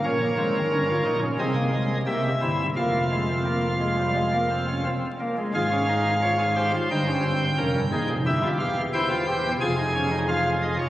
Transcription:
0.04 0.25 A#1 medium
0.04 0.25 A#2 medium
0.04 0.18 C#4 medium
0.04 1.19 A#4 medium
0.04 1.19 C#5 medium
0.21 0.35 A#3 medium
0.37 0.58 G#1 medium
0.37 0.58 G#2 medium
0.37 0.58 C4 medium
0.72 0.92 G1 medium
0.72 0.92 G2 medium
0.72 0.86 C#4 medium
0.89 1.02 F4 medium
1.05 1.26 A#1 medium
1.05 1.26 A#2 medium
1.05 1.19 D#4 medium
1.22 1.36 C#4 medium
1.39 1.97 C2 medium
1.39 1.97 C3 medium
1.39 1.53 C4 medium
1.39 1.97 G#4 medium
1.39 1.97 D#5 medium
1.56 1.70 A#3 medium
1.73 1.94 G#3 medium
2.06 2.28 C2 medium
2.06 2.28 C3 medium
2.06 2.27 A#3 medium
2.06 2.28 G4 medium
2.06 2.66 E5 medium
2.41 2.62 G1 medium
2.41 2.63 G2 medium
2.41 2.63 C4 medium
2.41 2.63 E4 medium
2.76 4.86 F1 medium
2.76 4.86 F2 medium
2.76 2.98 A#3 medium
2.76 4.86 F4 medium
2.76 4.86 F5 medium
3.11 3.26 G#3 medium
3.29 3.44 C4 medium
3.45 3.67 A#3 medium
3.80 3.96 G#3 medium
3.99 4.14 G3 medium
4.15 4.31 G#3 medium
4.32 4.48 A#3 medium
4.51 4.66 C4 soft
4.68 4.83 C#4 medium
4.85 5.07 C4 medium
5.20 5.35 A#3 soft
5.37 5.52 G#3 soft
5.54 6.71 G#1 medium
5.54 6.71 G#2 medium
5.54 5.69 F4 medium
5.54 6.13 G#4 medium
5.54 6.71 F5 medium
5.71 5.86 C#4 medium
5.88 6.10 D#4 medium
6.22 6.37 F4 medium
6.22 6.43 C#5 medium
6.39 6.54 G#4 medium
6.56 6.71 G4 medium
6.56 7.44 C5 medium
6.74 6.88 F4 medium
6.91 7.49 G1 medium
6.91 7.49 G2 medium
6.91 7.05 D#4 medium
6.91 8.07 G5 medium
7.07 7.22 C#4 medium
7.24 7.45 C4 medium
7.57 7.72 F1 medium
7.57 7.72 F2 medium
7.57 7.79 C#4 medium
7.57 7.79 A#4 medium
7.75 7.90 G1 medium
7.75 7.90 G2 medium
7.92 8.07 D#1 medium
7.92 8.07 D#2 medium
7.92 8.13 D#4 medium
7.92 8.13 G#4 medium
8.09 8.24 F1 medium
8.09 8.24 F2 medium
8.26 8.47 G1 medium
8.26 8.47 G2 medium
8.26 8.41 E4 medium
8.26 8.58 G4 medium
8.26 8.47 E5 medium
8.43 8.58 F4 medium
8.59 9.47 E1 medium
8.59 9.47 E2 medium
8.59 8.81 G4 medium
8.59 8.81 F5 medium
8.93 9.08 E4 medium
8.93 9.51 C5 medium
8.93 9.51 G5 medium
9.10 9.25 F4 medium
9.27 9.48 G4 medium
9.60 10.76 F1 medium
9.60 10.76 F2 medium
9.60 9.75 F4 loud
9.60 10.76 G#4 medium
9.60 10.19 G#5 medium
9.78 9.92 D#4 medium
9.94 10.09 C#4 medium
10.11 10.26 D#4 medium
10.28 10.86 F4 medium
10.28 10.49 F5 medium
10.62 10.76 D#5 medium
10.79 10.89 C#5 medium

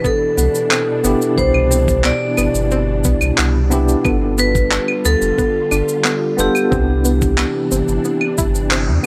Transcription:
0.00 0.99 B2 medium
0.00 4.01 B2 medium
0.00 4.01 E3 medium
0.00 1.00 D4 medium
0.00 4.01 D4 medium
0.00 1.01 E4 medium
0.00 1.02 G4 medium
0.04 0.19 B3 medium
0.04 1.35 A4 medium
0.04 kick medium
0.04 cabasa soft
0.37 0.49 C2 loud
0.37 0.47 B3 medium
0.37 cabasa medium
0.55 cabasa soft
0.71 0.80 C4 medium
0.71 clap medium
0.71 cabasa soft
0.71 claves medium
1.03 1.15 G1 medium
1.03 1.33 B3 medium
1.03 1.19 B3 medium
1.03 1.34 D4 medium
1.03 1.34 E4 medium
1.03 1.35 G4 loud
1.03 cabasa medium
1.22 cabasa soft
1.35 2.12 C2 loud
1.35 3.66 B2 medium
1.35 1.47 B3 medium
1.35 3.67 D4 medium
1.35 3.68 E4 medium
1.35 2.06 C5 loud
1.35 kick loud
1.35 cabasa soft
1.41 3.69 G4 medium
1.54 claves medium
1.71 1.80 C4 medium
1.71 cabasa medium
1.88 kick medium
1.88 cabasa soft
2.04 2.20 B3 medium
2.04 3.34 D5 loud
2.04 clap medium
2.04 cabasa soft
2.37 2.49 G1 loud
2.37 2.47 B3 medium
2.37 cabasa medium
2.37 claves medium
2.54 3.06 G1 medium
2.54 cabasa soft
2.71 2.80 C4 medium
2.71 cabasa soft
3.04 3.16 C2 medium
3.04 3.20 B3 medium
3.04 kick medium
3.04 cabasa medium
3.21 3.32 C2 medium
3.21 cabasa soft
3.21 claves medium
3.38 3.96 C2 loud
3.38 3.47 B3 medium
3.38 clap medium
3.38 cabasa soft
3.70 4.00 B3 medium
3.70 3.80 C4 medium
3.70 4.00 D4 medium
3.70 4.01 E4 medium
3.70 4.02 G4 loud
3.70 cabasa medium
3.88 cabasa soft
4.02 4.79 G1 medium
4.02 6.69 D3 medium
4.02 6.69 G3 medium
4.02 6.33 B3 medium
4.02 4.20 B3 medium
4.02 6.34 D4 medium
4.02 6.69 F4 medium
4.02 6.35 F4 medium
4.02 kick loud
4.02 cabasa soft
4.02 claves medium
4.08 6.36 A4 medium
4.38 4.47 B3 medium
4.38 5.07 B4 loud
4.38 cabasa medium
4.55 kick loud
4.55 cabasa soft
4.71 4.80 D4 medium
4.71 clap medium
4.71 cabasa soft
4.88 claves medium
5.05 5.16 D2 loud
5.05 5.20 B3 medium
5.05 6.34 A4 loud
5.05 cabasa medium
5.21 5.32 F1 medium
5.21 cabasa soft
5.38 5.47 B3 medium
5.38 kick medium
5.38 cabasa soft
5.71 5.82 G1 loud
5.71 5.80 D4 medium
5.71 cabasa medium
5.71 claves medium
5.89 cabasa soft
6.04 6.20 B3 medium
6.04 clap medium
6.04 cabasa soft
6.37 6.49 F1 medium
6.37 6.67 B3 loud
6.37 6.47 B3 medium
6.37 6.67 D4 medium
6.37 6.68 F4 medium
6.37 8.68 G4 medium
6.37 6.68 A4 loud
6.37 cabasa medium
6.55 cabasa soft
6.55 claves medium
6.69 7.46 C2 loud
6.69 9.06 C3 medium
6.69 9.06 E3 medium
6.69 9.00 B3 medium
6.69 6.80 C4 medium
6.69 9.06 D4 medium
6.69 9.01 D4 medium
6.69 9.01 E4 medium
6.69 kick loud
6.69 cabasa soft
6.75 9.03 G4 medium
7.05 7.20 B3 medium
7.05 cabasa medium
7.22 kick medium
7.22 cabasa soft
7.38 7.47 B3 medium
7.38 clap medium
7.38 cabasa soft
7.38 claves medium
7.71 7.83 G1 medium
7.71 7.80 C4 medium
7.71 cabasa medium
7.88 7.99 G1 medium
7.88 cabasa soft
8.05 8.20 B3 medium
8.05 cabasa soft
8.21 claves medium
8.38 8.90 G1 medium
8.38 8.53 E4 medium
8.38 kick loud
8.38 cabasa medium
8.55 cabasa soft
8.71 8.86 C4 medium
8.71 clap loud
8.71 cabasa soft
8.88 8.99 E2 medium

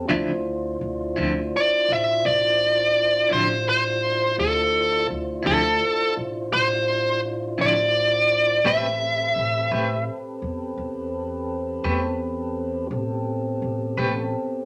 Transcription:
0.07 0.77 D2 medium
0.07 0.31 D3 medium
0.07 0.31 F3 medium
0.07 0.31 C4 medium
0.07 4.32 D4 medium
0.07 4.33 E4 medium
0.07 0.31 E4 medium
0.07 4.33 F4 medium
0.07 4.33 C5 medium
0.81 1.14 D2 medium
1.16 1.50 D2 medium
1.16 1.39 D3 soft
1.16 1.39 F3 medium
1.16 1.38 C4 medium
1.16 1.38 E4 medium
1.57 1.91 D5 medium
1.88 2.21 A1 medium
1.93 2.26 E5 medium
2.25 3.27 A1 medium
2.25 3.35 D5 medium
3.29 4.34 A1 medium
3.29 3.52 D3 soft
3.29 3.52 F3 medium
3.29 3.52 C4 medium
3.29 3.51 E4 medium
3.29 3.68 C5 medium
3.69 4.35 C5 medium
4.35 5.05 D2 medium
4.35 8.60 D4 medium
4.35 8.60 E4 medium
4.35 8.60 F4 medium
4.35 8.60 C5 medium
4.40 5.06 A4 medium
5.10 5.42 D2 medium
5.43 5.78 D2 medium
5.43 5.66 D3 medium
5.43 5.66 F3 medium
5.43 5.66 C4 medium
5.43 5.65 E4 medium
5.47 6.13 A4 medium
6.17 6.49 A1 medium
6.53 7.55 A1 medium
6.53 7.19 C5 loud
7.58 8.61 A1 medium
7.58 7.80 D3 soft
7.58 7.80 F3 medium
7.58 7.80 C4 medium
7.58 7.79 E4 medium
7.58 8.66 D5 medium
8.64 9.32 A1 medium
8.64 8.86 A3 medium
8.64 12.87 C4 medium
8.64 8.86 C4 medium
8.64 12.87 G4 medium
8.64 8.87 G4 medium
8.64 12.87 A4 medium
8.64 12.87 B4 medium
8.64 8.87 B4 medium
8.64 10.04 E5 medium
9.36 9.69 A1 medium
9.71 10.04 A1 medium
9.71 9.94 A3 medium
9.71 9.94 C4 medium
9.71 9.93 G4 medium
9.71 9.93 B4 medium
10.42 10.75 E2 medium
10.77 11.80 E2 medium
11.84 12.86 E2 medium
11.84 12.06 A3 medium
11.84 12.06 C4 medium
11.84 12.06 G4 medium
11.84 12.06 B4 medium
12.91 13.58 A1 medium
12.91 14.65 B3 medium
12.91 14.65 C4 medium
12.91 14.65 G4 medium
12.91 14.65 A4 medium
13.62 13.94 A1 medium
13.98 14.30 A1 medium
13.98 14.20 A3 medium
13.98 14.19 C4 medium
13.98 14.19 G4 medium
13.98 14.19 B4 medium

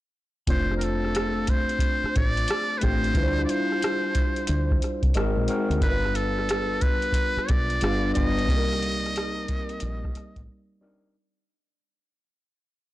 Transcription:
0.47 1.65 F1 medium
0.47 1.60 A3 medium
0.47 1.60 C4 medium
0.47 1.61 D4 medium
0.47 1.61 F4 medium
0.47 1.61 C5 medium
0.47 0.75 C5 medium
0.47 kick loud
0.47 closed hi-hat medium
0.71 cross-stick soft
0.77 0.85 A#4 medium
0.81 1.51 A4 medium
0.81 closed hi-hat medium
1.05 cross-stick soft
1.15 cross-stick loud
1.15 closed hi-hat medium
1.47 2.15 C5 medium
1.47 kick medium
1.47 closed hi-hat medium
1.69 closed hi-hat soft
1.79 kick medium
1.79 closed hi-hat medium
2.04 muted fingered electric bass stroke soft
2.04 cross-stick soft
2.16 2.46 A1 medium
2.16 2.80 D5 medium
2.16 kick medium
2.16 cross-stick soft
2.16 closed hi-hat soft
2.37 closed hi-hat soft
2.48 cross-stick loud
2.48 closed hi-hat medium
2.78 3.10 A3 medium
2.78 3.10 C4 medium
2.78 3.11 D4 medium
2.78 2.85 B4 medium
2.78 closed hi-hat medium
2.82 3.13 A1 medium
2.82 3.11 F4 medium
2.82 3.11 G4 medium
2.82 3.44 C5 medium
2.82 kick medium
3.04 closed hi-hat soft
3.15 3.45 D2 medium
3.15 4.27 G3 medium
3.15 4.27 D4 medium
3.15 4.27 E4 medium
3.15 4.27 F4 medium
3.15 3.24 B4 medium
3.15 kick loud
3.15 closed hi-hat medium
3.23 4.31 C5 medium
3.39 cross-stick soft
3.45 3.52 D5 medium
3.49 4.82 C5 medium
3.49 closed hi-hat medium
3.72 cross-stick soft
3.82 cross-stick loud
3.82 closed hi-hat medium
4.15 kick medium
4.15 closed hi-hat medium
4.36 closed hi-hat soft
4.47 4.79 D2 medium
4.47 closed hi-hat medium
4.71 kick medium
4.71 cross-stick soft
4.82 cross-stick soft
4.82 closed hi-hat medium
5.03 5.14 C2 medium
5.03 kick medium
5.03 closed hi-hat soft
5.14 5.34 G#1 medium
5.14 5.44 G#3 medium
5.14 5.44 C4 medium
5.14 5.44 D#4 medium
5.14 5.45 F#4 medium
5.14 5.45 A#4 medium
5.14 cross-stick medium
5.14 closed hi-hat medium
5.37 5.47 A#1 medium
5.48 5.77 G#3 medium
5.48 5.77 C4 medium
5.48 5.78 D#4 medium
5.48 5.78 F#4 medium
5.48 5.78 A#4 medium
5.48 closed hi-hat medium
5.70 5.80 D2 medium
5.70 closed hi-hat soft
5.81 6.99 G1 medium
5.81 6.93 G3 medium
5.81 6.94 B3 medium
5.81 6.94 D4 medium
5.81 6.94 F4 medium
5.81 5.90 A#4 medium
5.81 6.17 B4 medium
5.81 kick loud
5.81 closed hi-hat medium
5.89 6.98 B4 medium
6.05 cross-stick soft
6.15 6.83 A4 medium
6.15 closed hi-hat medium
6.39 cross-stick soft
6.49 cross-stick loud
6.49 closed hi-hat medium
6.81 7.50 B4 medium
6.81 kick medium
6.81 closed hi-hat medium
7.02 closed hi-hat soft
7.13 kick medium
7.13 closed hi-hat medium
7.37 muted fingered electric bass stroke soft
7.37 cross-stick soft
7.49 7.79 B1 medium
7.49 8.14 D5 loud
7.49 kick medium
7.49 cross-stick soft
7.49 closed hi-hat medium
7.70 closed hi-hat soft
7.81 8.12 G1 medium
7.81 8.11 G3 medium
7.81 8.11 B3 medium
7.81 8.11 D4 medium
7.81 8.11 F4 medium
7.81 8.11 B4 medium
7.81 cross-stick medium
7.81 closed hi-hat medium
8.15 8.49 G1 medium
8.15 8.44 G3 medium
8.15 8.44 B3 medium
8.15 8.44 D4 medium
8.15 8.44 F4 medium
8.15 8.45 G4 medium
8.15 10.44 D#5 loud
8.15 kick medium
8.15 closed hi-hat medium
8.38 closed hi-hat soft
8.49 9.66 C2 medium
8.49 9.61 G3 medium
8.49 9.61 A#3 medium
8.49 9.61 C4 medium
8.49 9.61 D#4 medium
8.49 8.57 A4 medium
8.49 kick loud
8.49 closed hi-hat medium
8.57 9.65 A#4 medium
8.73 cross-stick soft
8.82 closed hi-hat medium
9.06 cross-stick soft
9.06 closed hi-hat soft
9.16 cross-stick loud
9.16 closed hi-hat medium
9.48 kick medium
9.48 closed hi-hat medium
9.69 closed hi-hat soft
9.80 10.12 A#1 medium
9.80 closed hi-hat medium
10.04 kick medium
10.04 cross-stick soft
10.15 muted fingered electric bass stroke soft
10.15 cross-stick soft
10.15 closed hi-hat medium
10.36 10.47 A1 medium
10.36 kick medium
10.36 closed hi-hat soft
10.81 11.10 G3 medium
10.81 11.10 C4 medium
10.81 11.11 D4 medium
10.81 11.11 D#4 medium
10.81 11.11 A#4 medium

